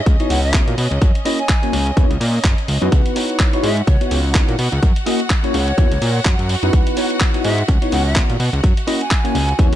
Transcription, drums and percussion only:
0.06 kick loud
0.06 closed hi-hat medium
0.20 closed hi-hat medium
0.30 open hi-hat loud
0.54 kick loud
0.54 clap loud
0.54 closed hi-hat medium
0.68 closed hi-hat medium
0.78 open hi-hat loud
0.92 closed hi-hat soft
1.02 kick loud
1.02 closed hi-hat medium
1.15 closed hi-hat medium
1.25 open hi-hat loud
1.39 closed hi-hat soft
1.49 kick loud
1.49 clap loud
1.49 closed hi-hat medium
1.63 closed hi-hat medium
1.73 open hi-hat loud
1.87 closed hi-hat soft
1.97 kick loud
1.97 closed hi-hat medium
2.11 closed hi-hat soft
2.21 open hi-hat loud
2.44 kick loud
2.44 clap loud
2.44 closed hi-hat medium
2.58 closed hi-hat soft
2.68 open hi-hat loud
2.82 closed hi-hat soft
2.92 kick loud
2.92 closed hi-hat medium
3.06 closed hi-hat medium
3.16 open hi-hat loud
3.30 closed hi-hat soft
3.39 kick loud
3.39 clap loud
3.39 closed hi-hat medium
3.53 closed hi-hat medium
3.64 open hi-hat loud
3.77 closed hi-hat soft
3.87 kick loud
3.87 closed hi-hat medium
4.01 closed hi-hat soft
4.11 open hi-hat loud
4.35 kick loud
4.35 clap loud
4.35 closed hi-hat medium
4.49 closed hi-hat soft
4.59 open hi-hat loud
4.72 closed hi-hat soft
4.83 kick loud
4.83 closed hi-hat medium
4.96 closed hi-hat medium
5.06 open hi-hat loud
5.20 closed hi-hat soft
5.30 kick loud
5.30 clap loud
5.30 closed hi-hat medium
5.44 closed hi-hat medium
5.54 open hi-hat loud
5.68 closed hi-hat soft
5.78 kick loud
5.78 closed hi-hat medium
5.92 closed hi-hat medium
6.02 open hi-hat loud
6.25 kick loud
6.25 clap loud
6.25 closed hi-hat medium
6.39 closed hi-hat soft
6.49 open hi-hat loud
6.63 closed hi-hat soft
6.73 kick loud
6.73 closed hi-hat medium
6.87 closed hi-hat medium
6.97 open hi-hat loud
7.10 closed hi-hat soft
7.20 kick loud
7.20 clap loud
7.20 closed hi-hat medium
7.34 closed hi-hat medium
7.44 open hi-hat loud
7.58 closed hi-hat soft
7.68 kick loud
7.68 closed hi-hat medium
7.82 closed hi-hat medium
7.92 open hi-hat loud
8.16 kick loud
8.16 clap loud
8.16 closed hi-hat medium
8.30 closed hi-hat medium
8.40 open hi-hat loud
8.54 closed hi-hat soft
8.64 kick loud
8.64 closed hi-hat medium
8.77 closed hi-hat medium
8.88 open hi-hat loud
9.01 closed hi-hat soft
9.11 kick loud
9.11 clap loud
9.11 closed hi-hat medium
9.25 closed hi-hat medium
9.35 open hi-hat loud
9.49 closed hi-hat soft
9.59 kick loud
9.59 closed hi-hat medium
9.73 closed hi-hat medium

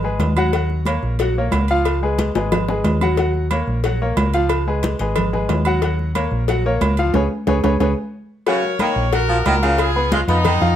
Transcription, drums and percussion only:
0.03 high conga soft
0.20 cowbell medium
0.20 high conga medium
0.20 low timbale medium
0.20 low agogo medium
0.36 high conga medium
0.36 low agogo loud
0.53 cowbell loud
0.53 high conga soft
0.53 low agogo medium
0.70 high conga soft
0.85 cowbell medium
0.85 high conga medium
0.85 low timbale medium
0.85 low agogo loud
1.03 high conga soft
1.19 cowbell loud
1.19 high conga soft
1.19 low agogo medium
1.35 high conga soft
1.52 cowbell medium
1.52 high conga medium
1.52 low timbale medium
1.52 low agogo loud
1.68 low agogo medium
1.85 cowbell loud
1.85 low agogo loud
2.02 high conga soft
2.18 cowbell medium
2.18 high conga loud
2.18 low timbale medium
2.18 low agogo medium
2.35 cowbell medium
2.35 high bongo loud
2.35 high conga soft
2.52 cowbell loud
2.52 high bongo medium
2.52 high conga soft
2.52 low conga medium
2.52 low agogo loud
2.68 low bongo medium
2.68 high conga soft
2.84 cowbell medium
2.84 high conga medium
2.84 low timbale medium
2.84 low agogo medium
3.01 low bongo medium
3.01 low agogo loud
3.17 cowbell loud
3.17 high conga soft
3.17 low agogo medium
3.35 high conga soft
3.51 cowbell medium
3.51 high conga medium
3.51 low timbale medium
3.51 low agogo loud
3.68 high conga soft
3.84 cowbell loud
3.84 high conga soft
3.84 low agogo medium
4.01 high conga soft
4.17 cowbell medium
4.17 high conga medium
4.17 low timbale medium
4.17 low agogo loud
4.34 low agogo medium
4.49 cowbell loud
4.49 low agogo loud
4.67 high conga soft
4.83 cowbell medium
4.83 high conga loud
4.83 low timbale medium
4.83 low agogo medium
4.99 cowbell medium
4.99 high conga soft
5.16 cowbell loud
5.16 high conga soft
5.16 low conga medium
5.16 low agogo loud
5.34 high conga soft
5.34 low conga medium
5.49 cowbell medium
5.49 high conga medium
5.49 low timbale medium
5.49 low agogo medium
5.65 low agogo loud
5.82 cowbell loud
5.82 high conga soft
5.82 low agogo medium
5.99 high conga soft
6.15 cowbell medium
6.15 high conga medium
6.15 low timbale medium
6.15 low agogo loud
6.32 high conga soft
6.48 cowbell loud
6.48 high conga soft
6.48 low agogo medium
6.65 high conga soft
6.81 cowbell medium
6.81 high conga medium
6.81 low timbale medium
6.81 low agogo loud
6.97 low agogo medium
7.14 cowbell loud
7.14 high conga loud
7.14 high timbale loud
7.47 cowbell loud
7.47 high conga loud
7.47 high timbale loud
7.64 cowbell loud
7.64 high conga loud
7.64 high timbale loud
7.80 cowbell medium
7.80 high conga medium
7.80 high timbale loud
8.46 cowbell loud
8.46 high conga soft
8.46 low agogo medium
8.63 high conga soft
8.79 cowbell medium
8.79 high conga medium
8.79 low timbale medium
8.79 low agogo loud
8.96 high conga soft
9.13 cowbell loud
9.13 high conga soft
9.13 low agogo medium
9.29 high conga soft
9.46 cowbell medium
9.46 high conga medium
9.46 low timbale loud
9.46 low agogo loud
9.63 low agogo medium
9.78 cowbell loud
9.78 high conga soft
9.78 low agogo loud
9.95 high conga soft
10.12 cowbell medium
10.12 high conga loud
10.12 low timbale medium
10.12 low agogo medium
10.29 cowbell medium
10.29 high conga soft
10.45 cowbell loud
10.45 high conga soft
10.45 low conga medium
10.45 low agogo loud
10.61 high conga soft
10.61 low conga medium

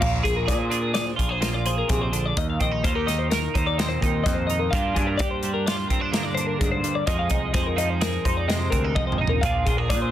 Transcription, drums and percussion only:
0.02 kick medium
0.02 crash medium
0.25 kick medium
0.25 snare soft
0.25 closed hi-hat soft
0.48 kick medium
0.48 snare soft
0.48 closed hi-hat medium
0.72 closed hi-hat soft
0.95 snare medium
0.95 closed hi-hat medium
1.19 kick medium
1.19 closed hi-hat medium
1.42 snare medium
1.42 closed hi-hat medium
1.66 closed hi-hat medium
1.89 kick medium
1.89 closed hi-hat medium
2.13 closed hi-hat medium
2.37 kick loud
2.37 closed hi-hat medium
2.60 kick medium
2.60 closed hi-hat soft
2.84 kick medium
2.84 closed hi-hat medium
3.08 snare soft
3.08 closed hi-hat medium
3.31 snare medium
3.31 closed hi-hat medium
3.55 kick medium
3.55 closed hi-hat soft
3.79 snare loud
3.79 closed hi-hat medium
4.02 kick medium
4.02 closed hi-hat soft
4.26 kick medium
4.26 snare soft
4.26 closed hi-hat medium
4.50 closed hi-hat soft
4.73 kick loud
4.73 closed hi-hat medium
4.96 kick medium
4.96 closed hi-hat medium
5.19 kick medium
5.19 closed hi-hat medium
5.43 closed hi-hat medium
5.67 snare loud
5.67 closed hi-hat medium
5.90 kick medium
5.90 closed hi-hat medium
6.14 snare loud
6.14 closed hi-hat medium
6.37 closed hi-hat medium
6.61 kick medium
6.61 closed hi-hat medium
6.84 closed hi-hat medium
7.07 kick loud
7.07 closed hi-hat medium
7.30 kick medium
7.30 closed hi-hat soft
7.54 kick medium
7.54 snare soft
7.54 closed hi-hat medium
7.78 closed hi-hat soft
8.01 snare loud
8.01 closed hi-hat medium
8.25 kick medium
8.25 closed hi-hat soft
8.50 snare medium
8.50 closed hi-hat medium
8.72 kick medium
8.72 closed hi-hat medium
8.96 kick medium
9.12 mid tom medium
9.27 floor tom medium
9.43 kick loud
9.43 closed hi-hat medium
9.66 kick medium
9.66 closed hi-hat medium
9.90 kick medium
9.90 closed hi-hat medium

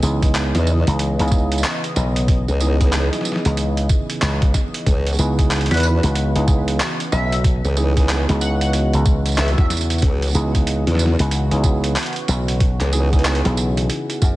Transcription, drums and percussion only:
0.03 tambourine medium
0.23 kick medium
0.23 closed hi-hat soft
0.23 tambourine soft
0.35 clap loud
0.35 closed hi-hat medium
0.35 tambourine soft
0.55 snare medium
0.55 closed hi-hat soft
0.55 tambourine soft
0.67 tambourine medium
0.87 closed hi-hat medium
0.87 tambourine soft
0.99 closed hi-hat medium
0.99 tambourine soft
1.19 closed hi-hat soft
1.19 tambourine soft
1.27 tambourine soft
1.31 kick loud
1.31 tambourine medium
1.38 tambourine soft
1.52 closed hi-hat medium
1.52 tambourine soft
1.58 tambourine soft
1.64 clap loud
1.64 closed hi-hat medium
1.84 closed hi-hat soft
1.84 tambourine soft
1.96 snare soft
1.96 tambourine medium
2.16 closed hi-hat medium
2.16 tambourine soft
2.28 kick loud
2.28 closed hi-hat medium
2.28 tambourine soft
2.48 tambourine soft
2.60 tambourine medium
2.81 kick medium
2.81 closed hi-hat soft
2.81 tambourine soft
2.93 clap loud
2.93 closed hi-hat medium
2.93 tambourine soft
3.13 snare soft
3.13 closed hi-hat soft
3.13 tambourine soft
3.21 snare soft
3.25 snare soft
3.25 tambourine medium
3.32 snare soft
3.36 snare soft
3.45 closed hi-hat soft
3.45 tambourine soft
3.57 closed hi-hat medium
3.57 tambourine soft
3.77 closed hi-hat soft
3.77 tambourine soft
3.89 kick loud
3.89 tambourine medium
4.10 closed hi-hat medium
4.10 tambourine soft
4.22 clap loud
4.22 closed hi-hat medium
4.22 tambourine soft
4.42 kick loud
4.42 snare soft
4.42 closed hi-hat soft
4.42 tambourine soft
4.54 kick medium
4.54 snare soft
4.54 tambourine medium
4.74 closed hi-hat medium
4.74 tambourine soft
4.86 kick loud
4.86 closed hi-hat medium
4.86 tambourine soft
5.07 closed hi-hat soft
5.07 tambourine soft
5.09 tambourine soft
5.13 tambourine soft
5.15 tambourine soft
5.17 tambourine soft
5.19 tambourine medium
5.39 kick medium
5.39 closed hi-hat soft
5.39 tambourine soft
5.51 clap loud
5.51 closed hi-hat soft
5.51 tambourine soft
5.56 closed hi-hat soft
5.61 closed hi-hat soft
5.66 closed hi-hat soft
5.71 snare soft
5.71 closed hi-hat soft
5.71 tambourine soft
5.74 closed hi-hat soft
5.77 closed hi-hat medium
5.80 closed hi-hat medium
5.80 tambourine medium
6.03 closed hi-hat soft
6.03 tambourine soft
6.15 closed hi-hat medium
6.15 tambourine soft
6.36 closed hi-hat soft
6.36 tambourine soft
6.48 kick loud
6.48 tambourine medium
6.68 closed hi-hat soft
6.68 tambourine soft
6.80 clap loud
6.80 closed hi-hat medium
6.80 tambourine soft
7.00 closed hi-hat soft
7.00 tambourine soft
7.12 snare soft
7.12 tambourine medium
7.32 closed hi-hat medium
7.32 tambourine soft
7.44 kick loud
7.44 closed hi-hat medium
7.44 tambourine soft
7.65 tambourine soft
7.77 tambourine medium
7.97 kick medium
7.97 closed hi-hat soft
7.97 tambourine soft
8.09 clap loud
8.09 closed hi-hat medium
8.09 tambourine soft
8.29 snare medium
8.29 closed hi-hat soft
8.29 tambourine soft
8.41 tambourine medium
8.61 closed hi-hat soft
8.61 tambourine soft
8.73 closed hi-hat medium
8.73 tambourine soft
8.93 closed hi-hat soft
8.93 tambourine soft
9.06 kick loud
9.06 tambourine medium
9.26 closed hi-hat soft
9.26 tambourine soft
9.29 tambourine soft
9.32 tambourine soft
9.35 clap loud
9.35 closed hi-hat medium
9.35 tambourine soft
9.48 closed hi-hat soft
9.48 tambourine soft
9.53 tambourine soft
9.58 kick loud
9.58 snare medium
9.58 tambourine soft
9.70 snare medium
9.70 tambourine medium
9.77 tambourine medium
9.81 tambourine soft
9.90 closed hi-hat medium
9.90 tambourine soft
9.98 closed hi-hat medium
9.98 tambourine soft
10.02 kick loud
10.02 tambourine soft
10.22 closed hi-hat soft
10.22 tambourine soft
10.24 tambourine soft
10.26 tambourine soft
10.28 tambourine soft
10.29 tambourine soft
10.31 tambourine soft
10.33 tambourine soft
10.35 tambourine medium
10.55 kick medium
10.55 closed hi-hat soft
10.55 tambourine soft
10.67 closed hi-hat medium
10.67 tambourine soft
10.87 snare soft
10.87 closed hi-hat soft
10.95 snare soft
10.99 tambourine medium
11.06 snare soft
11.19 closed hi-hat medium
11.19 tambourine soft
11.31 closed hi-hat medium
11.31 tambourine soft
11.51 closed hi-hat soft
11.51 tambourine soft
11.64 kick loud
11.64 tambourine medium
11.84 closed hi-hat medium
11.84 tambourine soft
11.96 clap loud
11.96 closed hi-hat medium
11.96 tambourine soft
11.99 closed hi-hat soft
12.03 closed hi-hat soft
12.06 closed hi-hat soft
12.13 closed hi-hat soft
12.16 closed hi-hat soft
12.16 tambourine soft
12.28 snare medium
12.28 tambourine medium
12.48 closed hi-hat medium
12.48 tambourine soft
12.60 kick loud
12.60 closed hi-hat medium
12.60 tambourine soft
12.80 clap soft
12.80 closed hi-hat soft
12.80 tambourine soft
12.93 tambourine medium
13.13 kick medium
13.13 closed hi-hat soft
13.13 tambourine soft
13.19 closed hi-hat soft
13.25 clap loud
13.25 closed hi-hat medium
13.25 tambourine soft
13.35 closed hi-hat soft
13.45 snare medium
13.45 closed hi-hat soft
13.45 tambourine soft
13.57 tambourine medium
13.77 closed hi-hat medium
13.77 tambourine soft
13.90 closed hi-hat medium
13.90 tambourine soft
14.10 closed hi-hat soft
14.10 tambourine soft
14.22 kick loud
14.22 tambourine medium

